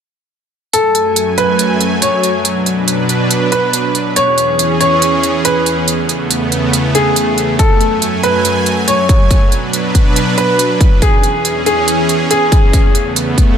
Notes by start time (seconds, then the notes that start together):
0.73 F#2 F#3 A3 A4 G#5, closed hi-hat
0.95 closed hi-hat
1.16 closed hi-hat
1.38 B4, closed hi-hat
1.59 closed hi-hat
1.81 closed hi-hat
2.02 C#5, closed hi-hat
2.23 closed hi-hat
2.45 B2 D4 B4, closed hi-hat
2.66 closed hi-hat
2.88 closed hi-hat
3.09 closed hi-hat
3.31 closed hi-hat
3.52 B4, closed hi-hat
3.73 closed hi-hat
3.95 closed hi-hat
4.16 E2 E3 C#4 G#4 C#5, closed hi-hat
4.38 closed hi-hat
4.59 closed hi-hat
4.81 C#5, closed hi-hat
5.02 closed hi-hat
5.23 closed hi-hat
5.45 B4, closed hi-hat
5.66 closed hi-hat
5.88 C#3 A3 B3, closed hi-hat
6.09 closed hi-hat
6.31 closed hi-hat
6.52 closed hi-hat
6.73 closed hi-hat
6.95 G#4, closed hi-hat
7.16 closed hi-hat
7.38 closed hi-hat
7.59 F#2 F#3 A4 G#5, kick, closed hi-hat
7.81 closed hi-hat
8.02 closed hi-hat
8.23 B4, closed hi-hat
8.45 closed hi-hat
8.66 closed hi-hat
8.88 C#5, closed hi-hat
9.09 kick, closed hi-hat
9.31 B2 F#3 D4 B4, kick, closed hi-hat
9.52 closed hi-hat
9.73 closed hi-hat
9.95 kick, closed hi-hat
10.16 closed hi-hat
10.38 B4, closed hi-hat
10.59 closed hi-hat
10.81 kick, closed hi-hat
11.02 E2 E3 C#4 G#4, kick, closed hi-hat
11.23 closed hi-hat
11.45 closed hi-hat
11.66 G#4, closed hi-hat
11.88 closed hi-hat
12.09 closed hi-hat
12.31 G#4, closed hi-hat
12.52 kick, closed hi-hat
12.73 C#3 A3 B3, kick, closed hi-hat
12.95 closed hi-hat
13.16 closed hi-hat
13.38 kick, closed hi-hat